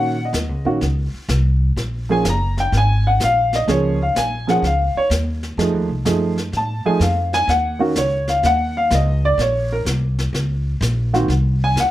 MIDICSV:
0, 0, Header, 1, 5, 480
1, 0, Start_track
1, 0, Key_signature, -5, "minor"
1, 0, Tempo, 476569
1, 1780, Time_signature, 4, 2, 24, 8
1, 11995, End_track
2, 0, Start_track
2, 0, Title_t, "Upright piano"
2, 0, Program_c, 0, 0
2, 0, Note_on_c, 0, 51, 73
2, 0, Note_on_c, 0, 58, 71
2, 0, Note_on_c, 0, 61, 74
2, 0, Note_on_c, 0, 66, 85
2, 0, Note_on_c, 0, 78, 117
2, 141, Note_off_c, 0, 51, 0
2, 141, Note_off_c, 0, 58, 0
2, 145, Note_off_c, 0, 61, 0
2, 147, Note_off_c, 0, 66, 0
2, 252, Note_on_c, 0, 75, 74
2, 255, Note_off_c, 0, 78, 0
2, 656, Note_on_c, 0, 51, 64
2, 663, Note_on_c, 0, 58, 59
2, 665, Note_on_c, 0, 61, 57
2, 670, Note_on_c, 0, 66, 77
2, 800, Note_off_c, 0, 51, 0
2, 803, Note_off_c, 0, 58, 0
2, 805, Note_off_c, 0, 61, 0
2, 807, Note_off_c, 0, 66, 0
2, 937, Note_off_c, 0, 75, 0
2, 2108, Note_on_c, 0, 53, 69
2, 2111, Note_on_c, 0, 58, 63
2, 2116, Note_on_c, 0, 61, 59
2, 2123, Note_on_c, 0, 68, 88
2, 2134, Note_on_c, 0, 80, 90
2, 2247, Note_off_c, 0, 53, 0
2, 2249, Note_off_c, 0, 58, 0
2, 2251, Note_off_c, 0, 61, 0
2, 2255, Note_off_c, 0, 68, 0
2, 2271, Note_off_c, 0, 80, 0
2, 2309, Note_on_c, 0, 82, 97
2, 2600, Note_off_c, 0, 82, 0
2, 2620, Note_on_c, 0, 79, 94
2, 2755, Note_off_c, 0, 79, 0
2, 2793, Note_on_c, 0, 80, 105
2, 3082, Note_off_c, 0, 80, 0
2, 3092, Note_on_c, 0, 78, 88
2, 3231, Note_off_c, 0, 78, 0
2, 3261, Note_on_c, 0, 77, 93
2, 3556, Note_off_c, 0, 77, 0
2, 3579, Note_on_c, 0, 75, 100
2, 3703, Note_on_c, 0, 53, 70
2, 3708, Note_on_c, 0, 58, 65
2, 3713, Note_on_c, 0, 61, 68
2, 3715, Note_off_c, 0, 75, 0
2, 3719, Note_on_c, 0, 68, 89
2, 3736, Note_on_c, 0, 73, 78
2, 3994, Note_off_c, 0, 53, 0
2, 3996, Note_off_c, 0, 58, 0
2, 3999, Note_off_c, 0, 61, 0
2, 4002, Note_off_c, 0, 68, 0
2, 4034, Note_off_c, 0, 73, 0
2, 4052, Note_on_c, 0, 77, 79
2, 4191, Note_off_c, 0, 77, 0
2, 4203, Note_on_c, 0, 80, 97
2, 4505, Note_on_c, 0, 53, 71
2, 4507, Note_off_c, 0, 80, 0
2, 4513, Note_on_c, 0, 58, 62
2, 4515, Note_on_c, 0, 61, 56
2, 4520, Note_on_c, 0, 68, 76
2, 4530, Note_on_c, 0, 78, 100
2, 4646, Note_off_c, 0, 53, 0
2, 4650, Note_off_c, 0, 58, 0
2, 4651, Note_off_c, 0, 61, 0
2, 4654, Note_off_c, 0, 68, 0
2, 4670, Note_off_c, 0, 78, 0
2, 4696, Note_on_c, 0, 77, 83
2, 4993, Note_off_c, 0, 77, 0
2, 5009, Note_on_c, 0, 73, 94
2, 5096, Note_off_c, 0, 73, 0
2, 5621, Note_on_c, 0, 53, 68
2, 5623, Note_on_c, 0, 57, 61
2, 5627, Note_on_c, 0, 63, 59
2, 5628, Note_on_c, 0, 68, 69
2, 5912, Note_off_c, 0, 53, 0
2, 5913, Note_off_c, 0, 57, 0
2, 5915, Note_off_c, 0, 63, 0
2, 5916, Note_off_c, 0, 68, 0
2, 6095, Note_on_c, 0, 53, 73
2, 6100, Note_on_c, 0, 57, 62
2, 6103, Note_on_c, 0, 63, 60
2, 6108, Note_on_c, 0, 68, 75
2, 6389, Note_off_c, 0, 53, 0
2, 6392, Note_off_c, 0, 57, 0
2, 6393, Note_off_c, 0, 63, 0
2, 6396, Note_off_c, 0, 68, 0
2, 6616, Note_on_c, 0, 81, 90
2, 6905, Note_on_c, 0, 53, 79
2, 6907, Note_on_c, 0, 57, 70
2, 6910, Note_on_c, 0, 63, 70
2, 6911, Note_on_c, 0, 80, 87
2, 6913, Note_off_c, 0, 81, 0
2, 6913, Note_on_c, 0, 68, 82
2, 7045, Note_off_c, 0, 53, 0
2, 7046, Note_off_c, 0, 57, 0
2, 7048, Note_off_c, 0, 63, 0
2, 7049, Note_off_c, 0, 68, 0
2, 7059, Note_off_c, 0, 80, 0
2, 7072, Note_on_c, 0, 77, 72
2, 7380, Note_off_c, 0, 77, 0
2, 7394, Note_on_c, 0, 80, 124
2, 7540, Note_off_c, 0, 80, 0
2, 7549, Note_on_c, 0, 78, 93
2, 7849, Note_on_c, 0, 51, 77
2, 7855, Note_on_c, 0, 58, 63
2, 7858, Note_off_c, 0, 78, 0
2, 7860, Note_on_c, 0, 61, 65
2, 7861, Note_on_c, 0, 66, 79
2, 7870, Note_on_c, 0, 70, 68
2, 7997, Note_off_c, 0, 51, 0
2, 8000, Note_off_c, 0, 58, 0
2, 8002, Note_off_c, 0, 61, 0
2, 8003, Note_off_c, 0, 66, 0
2, 8018, Note_off_c, 0, 70, 0
2, 8036, Note_on_c, 0, 73, 85
2, 8341, Note_off_c, 0, 73, 0
2, 8349, Note_on_c, 0, 77, 86
2, 8497, Note_off_c, 0, 77, 0
2, 8520, Note_on_c, 0, 78, 110
2, 8823, Note_off_c, 0, 78, 0
2, 8834, Note_on_c, 0, 77, 91
2, 8980, Note_off_c, 0, 77, 0
2, 9010, Note_on_c, 0, 75, 91
2, 9308, Note_off_c, 0, 75, 0
2, 9318, Note_on_c, 0, 74, 103
2, 9462, Note_off_c, 0, 74, 0
2, 9479, Note_on_c, 0, 73, 81
2, 9782, Note_off_c, 0, 73, 0
2, 9795, Note_on_c, 0, 70, 97
2, 9884, Note_off_c, 0, 70, 0
2, 11213, Note_on_c, 0, 51, 71
2, 11216, Note_on_c, 0, 58, 60
2, 11216, Note_on_c, 0, 60, 71
2, 11219, Note_on_c, 0, 66, 83
2, 11356, Note_off_c, 0, 51, 0
2, 11357, Note_off_c, 0, 58, 0
2, 11357, Note_off_c, 0, 60, 0
2, 11359, Note_off_c, 0, 66, 0
2, 11722, Note_on_c, 0, 80, 101
2, 11862, Note_off_c, 0, 80, 0
2, 11884, Note_on_c, 0, 78, 95
2, 11995, Note_off_c, 0, 78, 0
2, 11995, End_track
3, 0, Start_track
3, 0, Title_t, "Upright bass"
3, 0, Program_c, 1, 32
3, 0, Note_on_c, 1, 46, 82
3, 316, Note_off_c, 1, 46, 0
3, 330, Note_on_c, 1, 39, 88
3, 491, Note_off_c, 1, 39, 0
3, 491, Note_on_c, 1, 37, 53
3, 648, Note_off_c, 1, 37, 0
3, 654, Note_on_c, 1, 34, 68
3, 805, Note_off_c, 1, 34, 0
3, 817, Note_on_c, 1, 37, 80
3, 1119, Note_off_c, 1, 37, 0
3, 1295, Note_on_c, 1, 36, 100
3, 1763, Note_off_c, 1, 36, 0
3, 1777, Note_on_c, 1, 34, 84
3, 2245, Note_off_c, 1, 34, 0
3, 2263, Note_on_c, 1, 30, 77
3, 2728, Note_off_c, 1, 30, 0
3, 2743, Note_on_c, 1, 32, 91
3, 3208, Note_off_c, 1, 32, 0
3, 3221, Note_on_c, 1, 34, 100
3, 3687, Note_off_c, 1, 34, 0
3, 3703, Note_on_c, 1, 37, 84
3, 4168, Note_off_c, 1, 37, 0
3, 4178, Note_on_c, 1, 34, 72
3, 4646, Note_off_c, 1, 34, 0
3, 4656, Note_on_c, 1, 37, 80
3, 4960, Note_off_c, 1, 37, 0
3, 5134, Note_on_c, 1, 39, 91
3, 5603, Note_off_c, 1, 39, 0
3, 5613, Note_on_c, 1, 41, 74
3, 5772, Note_off_c, 1, 41, 0
3, 5772, Note_on_c, 1, 39, 56
3, 5928, Note_off_c, 1, 39, 0
3, 5934, Note_on_c, 1, 36, 65
3, 6086, Note_off_c, 1, 36, 0
3, 6094, Note_on_c, 1, 42, 76
3, 6563, Note_off_c, 1, 42, 0
3, 6570, Note_on_c, 1, 45, 79
3, 6876, Note_off_c, 1, 45, 0
3, 7047, Note_on_c, 1, 41, 96
3, 7519, Note_off_c, 1, 41, 0
3, 7529, Note_on_c, 1, 39, 88
3, 7999, Note_off_c, 1, 39, 0
3, 8014, Note_on_c, 1, 37, 82
3, 8481, Note_off_c, 1, 37, 0
3, 8491, Note_on_c, 1, 39, 92
3, 8960, Note_off_c, 1, 39, 0
3, 8969, Note_on_c, 1, 37, 103
3, 9438, Note_off_c, 1, 37, 0
3, 9444, Note_on_c, 1, 34, 91
3, 9915, Note_off_c, 1, 34, 0
3, 9924, Note_on_c, 1, 36, 84
3, 10395, Note_off_c, 1, 36, 0
3, 10402, Note_on_c, 1, 37, 85
3, 10873, Note_off_c, 1, 37, 0
3, 10885, Note_on_c, 1, 34, 103
3, 11354, Note_off_c, 1, 34, 0
3, 11363, Note_on_c, 1, 36, 92
3, 11833, Note_off_c, 1, 36, 0
3, 11843, Note_on_c, 1, 39, 85
3, 11995, Note_off_c, 1, 39, 0
3, 11995, End_track
4, 0, Start_track
4, 0, Title_t, "Muted upright bass strokes"
4, 1143, Note_on_c, 9, 29, 38
4, 1244, Note_off_c, 9, 29, 0
4, 4985, Note_on_c, 9, 29, 42
4, 5086, Note_off_c, 9, 29, 0
4, 6898, Note_on_c, 9, 29, 40
4, 6999, Note_off_c, 9, 29, 0
4, 11995, End_track
5, 0, Start_track
5, 0, Title_t, "Drums"
5, 340, Note_on_c, 9, 44, 72
5, 342, Note_on_c, 9, 38, 75
5, 440, Note_off_c, 9, 44, 0
5, 442, Note_off_c, 9, 38, 0
5, 818, Note_on_c, 9, 25, 49
5, 818, Note_on_c, 9, 38, 43
5, 918, Note_off_c, 9, 38, 0
5, 1298, Note_on_c, 9, 44, 49
5, 1300, Note_on_c, 9, 38, 74
5, 1399, Note_off_c, 9, 44, 0
5, 1401, Note_off_c, 9, 38, 0
5, 1785, Note_off_c, 9, 25, 0
5, 1785, Note_on_c, 9, 25, 48
5, 1785, Note_on_c, 9, 38, 52
5, 1886, Note_off_c, 9, 38, 0
5, 2264, Note_on_c, 9, 44, 67
5, 2266, Note_on_c, 9, 38, 73
5, 2364, Note_off_c, 9, 44, 0
5, 2366, Note_off_c, 9, 38, 0
5, 2594, Note_on_c, 9, 38, 47
5, 2694, Note_off_c, 9, 38, 0
5, 2749, Note_off_c, 9, 25, 0
5, 2749, Note_on_c, 9, 25, 45
5, 2749, Note_on_c, 9, 38, 41
5, 2850, Note_off_c, 9, 38, 0
5, 3225, Note_on_c, 9, 44, 71
5, 3227, Note_on_c, 9, 38, 64
5, 3326, Note_off_c, 9, 44, 0
5, 3328, Note_off_c, 9, 38, 0
5, 3552, Note_on_c, 9, 38, 39
5, 3653, Note_off_c, 9, 38, 0
5, 3708, Note_off_c, 9, 25, 0
5, 3708, Note_on_c, 9, 25, 46
5, 3708, Note_on_c, 9, 38, 49
5, 3808, Note_off_c, 9, 38, 0
5, 4189, Note_on_c, 9, 44, 54
5, 4191, Note_on_c, 9, 38, 73
5, 4290, Note_off_c, 9, 44, 0
5, 4292, Note_off_c, 9, 38, 0
5, 4517, Note_on_c, 9, 38, 43
5, 4618, Note_off_c, 9, 38, 0
5, 4671, Note_off_c, 9, 25, 0
5, 4671, Note_on_c, 9, 25, 49
5, 4671, Note_on_c, 9, 38, 46
5, 4772, Note_off_c, 9, 38, 0
5, 5147, Note_on_c, 9, 44, 59
5, 5149, Note_on_c, 9, 38, 71
5, 5247, Note_off_c, 9, 44, 0
5, 5249, Note_off_c, 9, 38, 0
5, 5469, Note_on_c, 9, 38, 38
5, 5570, Note_off_c, 9, 38, 0
5, 5630, Note_off_c, 9, 25, 0
5, 5630, Note_on_c, 9, 25, 52
5, 5630, Note_on_c, 9, 38, 50
5, 5730, Note_off_c, 9, 38, 0
5, 6098, Note_on_c, 9, 44, 59
5, 6100, Note_on_c, 9, 38, 75
5, 6198, Note_off_c, 9, 44, 0
5, 6200, Note_off_c, 9, 38, 0
5, 6422, Note_on_c, 9, 38, 45
5, 6523, Note_off_c, 9, 38, 0
5, 6579, Note_off_c, 9, 25, 0
5, 6579, Note_on_c, 9, 25, 46
5, 6579, Note_on_c, 9, 38, 47
5, 6680, Note_off_c, 9, 38, 0
5, 7056, Note_on_c, 9, 44, 52
5, 7058, Note_on_c, 9, 38, 66
5, 7157, Note_off_c, 9, 44, 0
5, 7159, Note_off_c, 9, 38, 0
5, 7383, Note_on_c, 9, 38, 38
5, 7484, Note_off_c, 9, 38, 0
5, 7541, Note_off_c, 9, 25, 0
5, 7541, Note_on_c, 9, 25, 56
5, 7541, Note_on_c, 9, 38, 45
5, 7642, Note_off_c, 9, 38, 0
5, 8012, Note_on_c, 9, 44, 66
5, 8014, Note_on_c, 9, 38, 71
5, 8113, Note_off_c, 9, 44, 0
5, 8115, Note_off_c, 9, 38, 0
5, 8335, Note_on_c, 9, 38, 42
5, 8436, Note_off_c, 9, 38, 0
5, 8494, Note_off_c, 9, 25, 0
5, 8494, Note_on_c, 9, 25, 53
5, 8494, Note_on_c, 9, 38, 46
5, 8595, Note_off_c, 9, 38, 0
5, 8973, Note_on_c, 9, 44, 54
5, 8975, Note_on_c, 9, 38, 67
5, 9073, Note_off_c, 9, 44, 0
5, 9075, Note_off_c, 9, 38, 0
5, 9456, Note_off_c, 9, 25, 0
5, 9456, Note_on_c, 9, 25, 46
5, 9456, Note_on_c, 9, 38, 49
5, 9557, Note_off_c, 9, 38, 0
5, 9933, Note_on_c, 9, 44, 56
5, 9935, Note_on_c, 9, 38, 73
5, 10034, Note_off_c, 9, 44, 0
5, 10036, Note_off_c, 9, 38, 0
5, 10258, Note_on_c, 9, 38, 46
5, 10359, Note_off_c, 9, 38, 0
5, 10417, Note_off_c, 9, 25, 0
5, 10417, Note_on_c, 9, 25, 46
5, 10417, Note_on_c, 9, 38, 53
5, 10518, Note_off_c, 9, 38, 0
5, 10899, Note_on_c, 9, 44, 65
5, 10901, Note_on_c, 9, 38, 65
5, 11000, Note_off_c, 9, 44, 0
5, 11002, Note_off_c, 9, 38, 0
5, 11222, Note_on_c, 9, 38, 44
5, 11323, Note_off_c, 9, 38, 0
5, 11377, Note_off_c, 9, 25, 0
5, 11377, Note_on_c, 9, 25, 49
5, 11377, Note_on_c, 9, 38, 52
5, 11478, Note_off_c, 9, 38, 0
5, 11852, Note_on_c, 9, 44, 58
5, 11854, Note_on_c, 9, 38, 68
5, 11952, Note_off_c, 9, 44, 0
5, 11954, Note_off_c, 9, 38, 0
5, 11995, Note_off_c, 9, 25, 0
5, 11995, End_track
0, 0, End_of_file